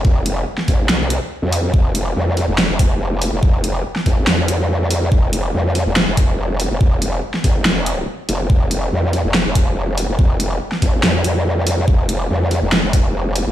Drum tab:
HH |--x---o-x-x---o-|--x---o---x---o-|--x---o---x---o-|--x---o---x---o-|
SD |-----o--o-------|--------o-------|-----o--o-------|--------o-------|
BD |o-----o---------|o---------o-----|o-----o---------|o---------o-----|

HH |--x---o---x---o-|--x---o---x---o-|--x---o---x---o-|--x---o---x---o-|
SD |-----o--o-------|--------o-------|-----o--o-------|--------o-------|
BD |o-----o---------|o---------o-----|o-----o---------|o---------o-----|